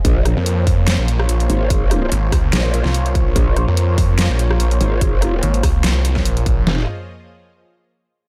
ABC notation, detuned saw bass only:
X:1
M:4/4
L:1/16
Q:"Swing 16ths" 1/4=145
K:Bbdor
V:1 name="Detuned saw bass" clef=bass
z3 F,,6 B,,,3 B,,,2 z2 | z4 A,,,2 D,,2 z3 C,,4 B,,, | z3 F,,6 B,,,3 B,,,2 z2 | z4 A,,,2 D,,2 C,,4 B,,,2 B,,,2 |
z16 |]